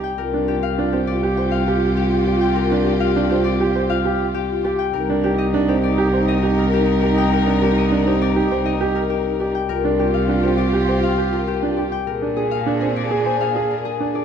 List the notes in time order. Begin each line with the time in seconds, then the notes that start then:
Already playing: G4 A#4 D5 D#5
0.04 G5
0.18 C2 F4 G4 A#4
0.34 D4
0.48 F4 G4
0.63 F5
0.78 D4 F4
0.93 C4 G4
1.07 F4 D5
1.23 G4
1.37 C5 G5
1.42 F4
1.51 F5
1.68 G4
1.73 F4
1.97 G4
2.04 F4
2.26 G4 D5
2.35 F4
2.41 G5
2.56 A#4
2.65 F4
2.72 D4
2.86 G4
2.96 F4
3.00 F5
3.16 D4
3.27 F4 G4
3.31 C4
3.44 D5
3.58 F4 G4
3.74 C5 G5
3.88 F4 F5
4.05 G4
4.19 F4
4.34 G4
4.50 F4
4.64 G4 D5
4.79 G5
4.93 C2 D#4 A#4
5.10 D4
5.24 D#4 G4
5.38 D#5
5.54 D4 D#4
5.69 C4 G4
5.83 D#4 D5
5.98 G4
6.13 D#4 C5 G5
6.28 D#5
6.43 G4
6.48 D#4
6.58 A#4
6.73 G4
6.79 D#4
7.02 G4 D5
7.10 D#4
7.18 G5
7.33 A#4
7.41 D#4
7.47 D4
7.62 G4
7.71 D#4
7.78 D#5
7.91 D4
8.02 D#4
8.06 C4 G4
8.22 D5
8.32 D#4 G4
8.51 C5 G5
8.63 D#4 D#5
8.81 G4
8.94 D#4 A#4
9.10 G4
9.24 D#4
9.40 G4 D5
9.55 G5
9.69 C2 F4 G4 A#4
9.85 D4
9.99 F4 G4
10.14 F5
10.29 D4
10.33 F4
10.43 C4 G4
10.58 D5
10.66 F4
10.73 G4
10.88 C5 G5
10.97 F4
11.03 F5
11.18 G4
11.29 F4 A#4
11.48 G4
11.61 D4 F4
11.76 G4 D5
11.92 G5
12.07 A#2 D4 G#4 A#4
12.22 D4
12.36 G#4
12.51 F5
12.66 D4
12.71 G#4
12.81 C4 G#4
12.96 D5
13.03 G#4
13.11 G#4
13.26 C5 G#5
13.35 G#4
13.41 F5
13.56 G#4
13.67 G#4 A#4
13.85 G#4
13.99 D4 G#4
14.15 G#4 D5